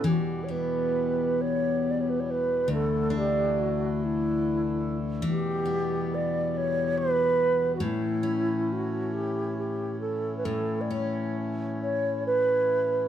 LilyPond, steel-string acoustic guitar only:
\new Staff \with { instrumentName = "Steel-string acoustic guitar" } { \clef bass \time 6/8 \key e \dorian \tempo 4. = 46 e8 b2~ b8 | d,8 d'2~ d'8 | e8 b2~ b8 | a,8 cis'2~ cis'8 |
a,8 cis'2~ cis'8 | }